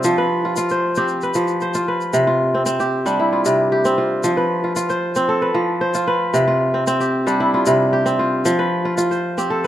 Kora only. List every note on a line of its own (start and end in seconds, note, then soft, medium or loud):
0.00 0.24 C4 medium
0.00 0.54 D4 medium
0.00 0.44 F4 medium
0.00 0.94 G4 medium
0.04 1.34 F3 medium
0.18 0.77 B4 medium
0.45 0.57 F4 medium
0.57 1.74 F4 medium
0.71 1.29 C5 medium
0.97 1.29 C4 medium
0.97 2.39 G4 medium
1.23 1.68 B4 medium
1.35 2.19 F3 medium
1.62 2.81 C5 medium
1.75 2.27 F4 medium
1.88 2.60 B4 medium
2.13 3.44 C3 medium
2.27 3.25 F4 medium
2.54 2.66 C4 medium
2.66 3.85 C4 medium
2.80 3.72 G4 medium
3.06 4.29 G3 medium
3.06 4.74 D4 medium
3.19 4.04 E4 medium
3.33 3.97 F4 medium
3.46 4.29 C3 medium
3.72 5.13 G4 medium
3.85 4.43 C4 medium
3.98 4.63 F4 medium
4.24 5.53 F3 medium
4.37 4.96 B4 medium
4.64 4.76 F4 medium
4.76 5.94 F4 medium
4.90 5.48 C5 medium
5.16 5.48 C4 medium
5.29 6.60 A4 medium
5.42 5.87 B4 medium
5.54 6.39 F3 medium
5.81 7.00 C5 medium
5.95 6.47 F4 medium
6.07 6.80 B4 medium
6.34 7.65 C3 medium
6.48 7.46 F4 medium
6.74 6.87 C4 medium
6.87 8.05 C4 medium
7.00 7.92 G4 medium
7.27 8.50 G3 medium
7.27 8.94 D4 medium
7.40 8.25 E4 medium
7.54 8.19 F4 medium
7.67 8.50 C3 medium
7.93 9.34 G4 medium
8.06 8.65 C4 medium
8.19 8.85 F4 medium
8.45 9.67 F3 medium
8.59 9.17 B4 medium
8.85 8.97 F4 medium
8.98 9.67 F4 medium
9.11 9.67 C5 medium
9.38 9.67 C4 medium
9.38 9.67 G4 medium
9.50 9.67 A4 medium